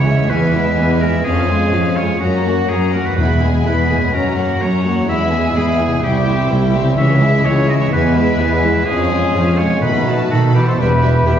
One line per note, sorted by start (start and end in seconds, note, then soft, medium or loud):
0.00 0.25 C#2 medium
0.00 0.23 C#3 soft
0.00 0.16 G#3 soft
0.00 0.28 G#3 medium
0.00 0.28 E4 soft
0.00 1.22 E4 soft
0.00 0.25 G#4 soft
0.00 0.31 C#5 medium
0.05 0.31 G#3 soft
0.05 0.29 C#4 medium
0.05 0.31 E5 soft
0.13 1.18 E2 soft
0.17 1.10 G#3 soft
0.21 1.23 B3 soft
0.26 0.51 B3 soft
0.26 1.20 G#4 soft
0.26 1.02 B4 medium
0.30 0.72 E2 medium
0.30 0.52 E3 soft
0.30 1.24 G#3 medium
0.30 1.23 B3 medium
0.30 0.53 G#5 soft
0.53 0.78 G#3 soft
0.53 0.77 E4 soft
0.53 0.78 E5 soft
0.77 1.20 E2 medium
0.77 1.02 E3 soft
0.77 1.01 B3 soft
0.77 1.01 G#5 soft
1.00 1.25 G#3 soft
1.00 1.25 E4 soft
1.00 1.24 A#4 medium
1.00 1.25 E5 soft
1.07 2.15 F2 soft
1.11 2.17 G#3 soft
1.16 2.11 C#4 soft
1.21 1.67 F2 medium
1.21 1.46 C#4 soft
1.21 2.21 G#4 soft
1.21 1.98 G#4 medium
1.25 1.47 F3 soft
1.25 2.04 G#3 soft
1.25 2.04 C#4 soft
1.25 1.48 F5 soft
1.46 1.72 F4 soft
1.46 1.73 G#5 soft
1.51 1.74 G#3 soft
1.70 2.16 F2 soft
1.70 1.97 F3 soft
1.70 1.96 C#4 soft
1.74 1.98 F5 soft
1.96 2.22 G#3 soft
1.96 2.21 F4 soft
1.96 2.20 C#5 medium
1.96 2.22 G#5 soft
2.04 3.12 F#2 soft
2.08 3.14 A#3 soft
2.13 3.16 C#4 soft
2.17 2.44 F#3 soft
2.17 2.69 A#3 soft
2.17 2.44 C#4 soft
2.17 2.69 C#4 soft
2.17 2.71 F#4 medium
2.17 3.18 C#5 soft
2.22 2.65 F#2 soft
2.22 2.44 A#5 soft
2.47 2.71 A#3 soft
2.47 2.71 F#4 soft
2.47 2.71 F#5 soft
2.69 3.12 F#2 soft
2.69 2.94 F#3 soft
2.69 2.94 A#3 soft
2.69 2.94 C#4 soft
2.69 2.93 G#4 medium
2.69 2.94 A#5 soft
2.93 3.19 A#3 soft
2.93 3.19 F#4 soft
2.93 3.07 A#4 medium
2.93 3.18 F#5 soft
3.01 4.07 E2 soft
3.06 4.09 G#3 soft
3.06 3.45 B4 medium
3.10 4.12 E4 soft
3.15 3.86 E2 medium
3.15 3.61 E2 soft
3.15 3.63 G#3 soft
3.15 3.63 B3 soft
3.15 4.14 G#4 soft
3.15 3.41 B5 soft
3.19 3.41 B3 soft
3.19 3.41 E4 soft
3.42 3.67 G#3 soft
3.42 3.66 G#4 soft
3.42 3.67 G#5 soft
3.64 4.08 E2 soft
3.64 4.13 G#3 soft
3.64 3.90 B3 soft
3.64 4.13 B3 soft
3.64 3.89 E4 soft
3.64 4.15 B4 medium
3.64 3.91 B5 soft
3.88 4.14 G#3 soft
3.88 4.13 G#4 soft
3.88 4.14 G#5 soft
3.95 5.02 F#2 soft
4.00 5.04 A#3 soft
4.05 5.06 C#4 soft
4.09 5.08 F#4 soft
4.13 4.55 F#2 soft
4.13 4.60 F#3 soft
4.13 4.36 F#3 soft
4.13 4.36 C#4 soft
4.13 4.60 C#4 soft
4.13 4.63 A#4 medium
4.13 4.36 A#5 soft
4.37 4.61 A#3 soft
4.37 4.61 F#4 soft
4.37 4.61 F#5 soft
4.61 5.03 F#2 soft
4.61 4.85 F#3 soft
4.61 5.08 F#3 soft
4.61 4.85 C#4 soft
4.61 5.08 C#4 soft
4.61 5.08 C#5 medium
4.61 4.85 A#5 soft
4.85 5.09 A#3 soft
4.85 5.09 F#4 soft
4.85 5.09 F#5 soft
4.91 5.97 E2 soft
4.95 5.99 B3 soft
5.00 5.94 E4 soft
5.04 5.50 E2 soft
5.04 5.30 E4 soft
5.04 6.03 G#4 soft
5.08 5.31 G#3 soft
5.08 5.55 G#3 soft
5.08 5.54 E4 soft
5.08 5.55 E5 medium
5.08 5.31 B5 soft
5.31 5.56 B3 soft
5.31 5.56 G#4 soft
5.31 5.57 G#5 soft
5.56 5.98 E2 soft
5.56 6.02 G#3 soft
5.56 5.81 G#3 soft
5.56 6.02 E4 soft
5.56 5.80 E4 soft
5.56 6.05 G#4 medium
5.56 5.80 B5 soft
5.79 6.03 B3 soft
5.79 6.03 G#4 soft
5.79 6.03 G#5 soft
5.86 6.91 C3 soft
5.91 6.93 C4 soft
5.95 8.85 E4 soft
6.00 6.45 C2 medium
6.00 6.96 G3 soft
6.00 6.25 E4 soft
6.00 6.96 E4 medium
6.00 6.98 G4 soft
6.00 6.51 G4 medium
6.00 6.25 G5 soft
6.05 6.26 G3 soft
6.26 6.51 C4 soft
6.26 6.50 G4 soft
6.26 6.51 E5 soft
6.49 6.92 C2 medium
6.49 6.75 G3 soft
6.49 6.73 E4 soft
6.49 6.74 G5 soft
6.74 6.98 C4 soft
6.74 6.98 G4 soft
6.74 6.98 E5 soft
6.80 7.85 C#3 soft
6.84 7.77 G#3 soft
6.89 7.90 C#4 soft
6.93 7.19 C#4 soft
6.93 7.86 G#4 soft
6.97 7.39 C#2 medium
6.97 7.20 E3 soft
6.97 7.43 G#3 soft
6.97 7.42 C#4 soft
6.97 7.20 C#5 soft
6.97 7.46 E5 medium
7.21 7.45 G#3 soft
7.21 7.45 E4 medium
7.21 7.45 E5 soft
7.44 7.87 C#2 medium
7.44 7.68 E3 soft
7.44 7.91 G#3 soft
7.44 7.91 C#4 medium
7.44 7.68 C#4 soft
7.44 7.68 C#5 soft
7.44 7.68 C#5 medium
7.67 7.92 G#3 soft
7.67 7.91 E4 soft
7.67 7.74 D#5 medium
7.67 7.92 E5 soft
7.74 8.80 E3 medium
7.78 8.72 G#3 soft
7.78 7.86 C#5 medium
7.83 8.84 B3 soft
7.88 8.14 E3 soft
7.88 8.81 G#4 soft
7.92 8.34 E2 medium
7.92 8.38 G#3 medium
7.92 8.14 B3 medium
7.92 8.39 B3 medium
7.92 8.38 B4 medium
7.92 8.15 G#5 soft
8.16 8.40 G#3 soft
8.16 8.40 E4 medium
8.16 8.40 E5 soft
8.39 8.82 E2 medium
8.39 8.64 E3 medium
8.39 8.86 G#3 medium
8.39 8.86 B3 medium
8.39 8.64 B3 medium
8.39 8.85 B4 medium
8.39 8.64 G#5 medium
8.64 8.87 G#3 soft
8.64 8.88 E4 soft
8.64 8.87 E5 soft
8.69 9.76 F3 soft
8.74 9.78 G#3 soft
8.78 9.80 C#4 soft
8.82 9.82 G#4 soft
8.82 9.59 G#4 medium
8.87 9.29 F2 medium
8.87 9.09 F3 soft
8.87 9.81 G#3 medium
8.87 9.83 C#4 medium
8.87 9.10 C#4 soft
8.87 9.10 F5 soft
9.10 9.35 G#3 soft
9.10 9.35 F4 soft
9.10 9.36 G#5 soft
9.34 9.77 F2 medium
9.34 9.59 F3 soft
9.34 9.59 C#4 soft
9.34 9.60 F5 soft
9.58 9.83 G#3 soft
9.58 9.83 F4 soft
9.58 9.81 C#5 medium
9.58 9.84 G#5 soft
9.64 10.72 B2 soft
9.69 10.74 F#3 soft
9.73 10.76 D#4 soft
9.78 10.79 A4 soft
9.82 10.26 B2 soft
9.82 10.51 B2 medium
9.82 10.05 D#3 soft
9.82 10.56 A3 soft
9.82 10.56 D#4 soft
9.82 10.07 D#4 soft
9.82 10.30 B4 medium
9.82 10.07 B5 soft
10.06 10.31 F#3 soft
10.06 10.32 F#4 soft
10.06 10.32 A5 soft
10.30 10.74 B2 soft
10.30 10.54 D#3 medium
10.30 10.56 D#4 soft
10.30 10.42 F#4 medium
10.30 10.54 A4 medium
10.30 10.56 A5 medium
10.30 10.56 B5 soft
10.54 10.79 E3 soft
10.54 10.79 F#4 soft
10.54 10.66 G4 medium
10.54 10.67 B4 medium
10.54 10.80 A5 soft
10.54 10.66 B5 soft
10.67 10.74 A4 soft
10.67 10.78 C5 medium
10.67 10.72 C6 soft
10.78 11.21 E1 medium
10.78 11.21 E2 medium
10.78 11.39 B2 medium
10.78 11.39 E3 soft
10.78 10.86 G3 soft
10.78 11.39 G3 soft
10.78 11.39 E4 soft
10.78 10.87 E4 soft
10.78 11.26 G4 medium
10.78 11.26 B4 medium
10.78 10.90 E5 soft
10.78 11.26 B5 medium
10.91 11.39 E4 soft
11.02 11.10 G3 soft
11.02 11.10 E4 soft
11.02 11.11 E5 soft
11.14 11.39 E5 soft
11.26 11.39 E1 soft
11.26 11.39 E2 medium
11.26 11.35 G3 soft
11.26 11.35 E4 soft
11.26 11.39 G4 medium
11.26 11.39 B4 medium
11.26 11.36 E5 soft
11.26 11.39 B5 soft
11.26 11.39 B5 medium